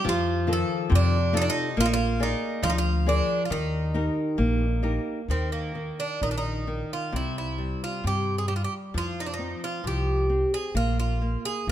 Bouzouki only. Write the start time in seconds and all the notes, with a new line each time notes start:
0.09 F4
0.53 A4
0.95 D4
1.37 D#4
1.42 D4
1.50 D#4
1.80 F4
1.86 D#4
1.94 F4
2.23 D#4
2.63 F4
2.70 D#4
2.78 F4
3.09 D4
3.45 F4
3.52 D#4
5.31 C4
5.52 A#3
6.00 D4
6.23 D#4
6.31 D4
6.38 D#4
6.93 F4
7.16 E4
7.38 E4
7.84 F4
8.07 G4
8.38 G#4
8.48 G4
8.56 F4
8.64 G4
8.98 F4
9.20 D#4
9.27 D4
9.34 D#4
9.64 F4
9.87 G4
10.54 G#4
10.77 F4
10.99 F4
11.45 G#4